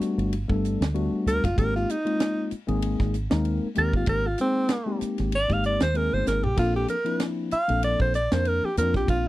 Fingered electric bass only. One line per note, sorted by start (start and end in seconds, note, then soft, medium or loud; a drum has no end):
0.01 muted fingered electric bass stroke soft
0.18 0.45 G1 medium
0.49 0.76 G1 medium
0.81 1.08 D2 medium
1.26 1.41 D2 medium
1.44 1.56 F#1 medium
1.58 1.85 G#1 loud
2.52 muted fingered electric bass stroke soft
2.68 2.96 G#1 medium
3.00 3.27 G#1 medium
3.32 3.59 D#2 medium
3.63 muted fingered electric bass stroke soft
3.78 3.92 D#2 medium
3.93 4.06 G#1 medium
4.07 4.35 G#1 medium
5.02 muted fingered electric bass stroke soft
5.19 5.46 G#1 medium
5.50 5.77 G#1 medium
5.82 6.09 D#2 medium
6.13 6.26 G1 medium
6.27 6.43 G#1 medium
6.45 6.57 A#1 medium
6.58 6.85 A#1 medium
7.52 muted fingered electric bass stroke soft
7.70 7.97 A#1 medium
8.00 8.27 A#1 medium
8.32 8.59 F2 medium
8.63 muted fingered electric bass stroke soft
8.77 8.92 F2 medium
8.95 9.07 A#1 medium
9.08 9.28 A#1 medium